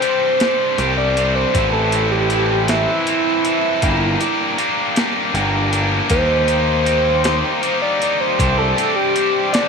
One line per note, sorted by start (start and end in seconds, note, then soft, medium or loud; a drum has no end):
0.00 0.40 G3 medium
0.00 0.40 C4 medium
0.00 0.40 D4 medium
0.00 0.39 G4 medium
0.00 0.92 C5 loud
0.00 closed hi-hat medium
0.40 0.78 G3 medium
0.40 0.78 C4 medium
0.40 0.78 D4 medium
0.40 0.78 G4 medium
0.40 snare loud
0.40 closed hi-hat medium
0.78 1.44 C2 medium
0.78 1.16 G3 medium
0.78 1.16 C4 medium
0.78 1.16 D4 medium
0.78 1.16 G4 medium
0.78 closed hi-hat medium
0.97 1.34 D5 medium
1.17 1.54 G3 medium
1.17 1.54 C4 medium
1.17 1.55 D4 medium
1.17 1.54 G4 medium
1.17 closed hi-hat medium
1.35 1.72 C5 medium
1.54 2.86 A1 medium
1.54 1.92 E3 medium
1.54 1.92 C4 medium
1.54 1.92 E4 medium
1.54 1.92 A4 loud
1.54 kick loud
1.54 closed hi-hat medium
1.73 2.10 A4 medium
1.92 2.30 E3 medium
1.92 2.30 C4 medium
1.92 2.30 E4 medium
1.92 2.30 A4 medium
1.92 closed hi-hat medium
2.12 2.67 G4 medium
2.30 2.68 E3 medium
2.30 2.68 C4 medium
2.30 2.68 E4 medium
2.30 2.67 A4 medium
2.30 closed hi-hat medium
2.68 3.04 E3 medium
2.68 3.05 C4 medium
2.68 4.93 E4 loud
2.68 3.06 E4 medium
2.68 3.06 A4 medium
2.68 snare loud
2.68 closed hi-hat medium
3.06 3.44 E3 medium
3.06 3.44 C4 medium
3.06 3.44 E4 medium
3.06 3.43 A4 medium
3.06 closed hi-hat medium
3.44 3.82 E3 medium
3.44 3.82 C4 medium
3.44 3.83 E4 medium
3.44 3.82 A4 medium
3.44 closed hi-hat medium
3.82 4.15 G1 loud
3.82 4.20 G3 medium
3.82 4.20 A#3 medium
3.82 4.19 D4 loud
3.82 4.20 G4 loud
3.82 4.19 A#4 loud
3.82 kick loud
3.82 closed hi-hat medium
4.20 4.57 G3 medium
4.20 4.57 A#3 medium
4.20 4.58 D4 medium
4.20 4.60 G4 medium
4.20 4.58 A#4 medium
4.20 closed hi-hat medium
4.58 4.95 G3 medium
4.58 4.95 A#3 medium
4.58 4.95 D4 medium
4.58 4.96 G4 medium
4.58 4.95 A#4 medium
4.58 closed hi-hat medium
4.96 5.33 G3 medium
4.96 5.34 A#3 medium
4.96 5.34 D4 medium
4.96 5.36 G4 medium
4.96 5.34 A#4 medium
4.96 snare loud
4.96 closed hi-hat medium
5.34 6.00 G1 loud
5.34 5.72 G3 medium
5.34 5.73 A#3 medium
5.34 5.71 D4 medium
5.34 6.11 G4 medium
5.34 5.71 A#4 medium
5.34 closed hi-hat medium
5.72 6.08 G3 medium
5.72 6.08 A#3 medium
5.72 6.09 D4 medium
5.72 6.09 A#4 medium
5.72 closed hi-hat medium
6.09 7.42 D#2 medium
6.09 6.47 G3 medium
6.09 6.47 A#3 medium
6.09 6.46 D#4 medium
6.09 6.45 G4 loud
6.09 7.78 C5 loud
6.09 kick medium
6.09 closed hi-hat medium
6.46 6.84 G3 medium
6.46 6.84 A#3 medium
6.46 6.85 D#4 medium
6.46 6.85 G4 medium
6.46 closed hi-hat medium
6.85 7.24 G3 medium
6.85 7.23 A#3 medium
6.85 7.23 D#4 medium
6.85 7.23 G4 medium
6.85 closed hi-hat medium
7.24 7.61 G3 medium
7.24 7.61 A#3 medium
7.24 7.61 D#4 medium
7.24 7.62 G4 medium
7.24 snare loud
7.24 closed hi-hat medium
7.62 8.00 G3 medium
7.62 8.00 A#3 medium
7.62 7.99 D#4 medium
7.62 7.99 G4 medium
7.62 closed hi-hat medium
7.82 8.19 D5 medium
8.00 8.37 G3 medium
8.00 8.38 A#3 medium
8.00 8.38 D#4 medium
8.00 8.38 G4 medium
8.00 closed hi-hat medium
8.20 8.57 C5 medium
8.38 8.72 C2 loud
8.38 8.76 G3 medium
8.38 8.76 C4 loud
8.38 8.75 D4 medium
8.38 8.75 G4 loud
8.38 9.69 C5 medium
8.38 9.69 D5 medium
8.38 9.69 G5 medium
8.38 9.69 D6 medium
8.38 kick loud
8.38 closed hi-hat loud
8.58 8.95 A4 medium
8.76 9.14 G3 medium
8.76 9.14 C4 medium
8.76 9.15 D4 medium
8.76 9.14 G4 medium
8.76 closed hi-hat medium
8.96 9.51 G4 medium
9.15 9.53 G3 medium
9.15 9.53 C4 medium
9.15 9.52 D4 medium
9.15 9.51 G4 medium
9.15 closed hi-hat medium
9.52 9.69 G3 medium
9.52 9.69 C4 medium
9.52 9.69 D4 medium
9.52 9.69 D4 loud
9.52 9.69 G4 medium
9.52 snare loud
9.52 closed hi-hat medium